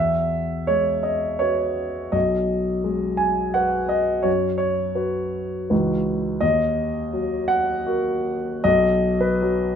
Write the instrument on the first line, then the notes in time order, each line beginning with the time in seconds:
grand piano
Already playing: E2 E5
0.67 G#3 C#5
1.03 D#5
1.39 F#4 B4 C#5
2.12 B1 D#5
2.84 G#3
3.17 G#5
3.54 F#4 B4 F#5
3.89 D#5
4.23 F#2 C#5
4.58 C#5
4.95 F#4 B4
5.70 C#2 E3 D#4 F#4 B4
6.41 D#2 D#5
7.13 F#3
7.48 F#5
7.86 F#4 A#4
8.64 B1 D#5
9.21 B4
9.42 F#3